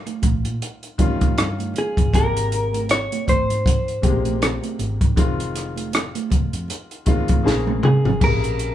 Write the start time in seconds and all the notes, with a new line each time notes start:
Already playing: D#3 G3 C#4 F4
0.06 closed hi-hat, high conga
0.22 A#1, kick, closed hi-hat, high conga, low conga
0.45 A#2, closed hi-hat
0.62 closed hi-hat
0.83 closed hi-hat
0.98 F2 D#3 G3 C#4 F4, kick, closed hi-hat, muted conga, high conga
1.20 kick, closed hi-hat, high conga
1.36 G2, cross-stick, closed hi-hat, muted conga
1.59 closed hi-hat, high conga
1.74 closed hi-hat, low conga
1.78 G#4
1.97 G1, kick, closed hi-hat
2.12 G#1 B2 G#3 A#3 G4 A#4, kick, closed hi-hat, low conga
2.19 C3
2.37 closed hi-hat
2.52 closed hi-hat
2.73 closed hi-hat, high conga
2.89 C#5, cross-stick, closed hi-hat, muted conga
3.12 closed hi-hat, high conga
3.27 G#1 C5, kick, closed hi-hat, muted conga, high conga, low conga
3.50 G#2, closed hi-hat
3.66 kick, closed hi-hat
3.88 closed hi-hat
4.02 A#1 A#2 G#3 A#3 G4, kick, closed hi-hat, muted conga, high conga
4.08 C3
4.25 closed hi-hat, high conga
4.42 cross-stick, closed hi-hat
4.63 closed hi-hat, high conga
4.79 G#1, closed hi-hat, muted conga, low conga
5.01 G#2, kick, closed hi-hat
5.16 F1 D#3 G#3 C4 F4, kick, closed hi-hat, low conga
5.40 closed hi-hat
5.54 cross-stick, closed hi-hat, muted conga
5.76 closed hi-hat, high conga
5.92 cross-stick, closed hi-hat, muted conga
6.15 closed hi-hat, high conga
6.30 F1, kick, closed hi-hat, muted conga, high conga, low conga
6.53 F2, closed hi-hat
6.68 closed hi-hat, muted conga
6.91 closed hi-hat
7.06 D#2 D#3 G#3 C4 F4, kick, closed hi-hat, high conga
7.28 kick, closed hi-hat, high conga
7.44 A#1 C#3 A#3 C4 G#4, snare
7.66 high tom, high conga
7.83 G#4, mid tom, muted conga, low conga
8.05 G#1, floor tom
8.20 A#1 C3 A#3 G#4 A#4, kick, crash
8.26 C#3
8.44 closed hi-hat
8.59 closed hi-hat